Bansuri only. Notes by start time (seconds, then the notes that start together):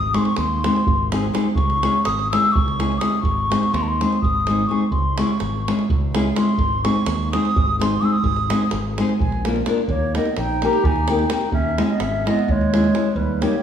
Already playing: D#6
0.14 C6 C#6
0.25 C#6
0.37 C6
1.56 C#6
2.05 D#6
2.32 E6
2.52 C#6
2.99 D#6
3.21 C#6
3.72 C6
3.83 A5
3.88 C6
4.21 D#6
4.67 C#6
4.91 C6
5.19 C#6
6.36 C6
6.84 C#6
7.32 D#6
7.81 C6
8.01 D#6 E6
8.12 D#6
9.20 G#5
9.89 C#5
10.16 D#5
10.38 G5
10.65 A#5
10.86 G#5
11.10 G5
11.31 G5
11.53 E5
11.79 D#5
11.83 E5
11.90 D#5
12.00 E5
12.28 D#5
12.51 C#5
13.16 B4
13.42 C#5